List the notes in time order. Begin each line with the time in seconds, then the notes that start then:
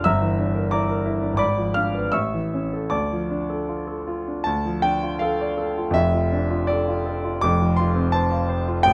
0.04 G1 E5 A#5 E6
0.22 E3
0.39 D4
0.55 A#4
0.71 E4 D5 A#5 D6
0.89 A#4
1.06 E4
1.23 D4
1.34 G#1 D6
1.38 D5 B5
1.58 F3
1.74 D4 F5 F6
1.95 B4
2.12 A1 E5 C#6 E6
2.34 E3
2.54 C#4
2.73 A4
2.90 D2 D5 A5 D6
3.12 F3
3.31 D4
3.50 A4
3.68 F4
3.87 A4
4.07 F4
4.28 D4
4.44 D2 A5
4.65 F3
4.82 D4 G5
5.03 F4
5.19 A4 F5
5.41 D5
5.58 A4
5.77 F4
5.91 F2 E5
5.95 F1
6.14 F3
6.33 D4
6.50 F4
6.67 A4 D5
6.88 F4
7.06 A4
7.24 F4
7.41 F1 F2 D6
7.60 F3
7.76 F4 C6
7.95 C4
8.12 C5 A5
8.31 F5
8.49 C5
8.68 F4
8.83 A1 G5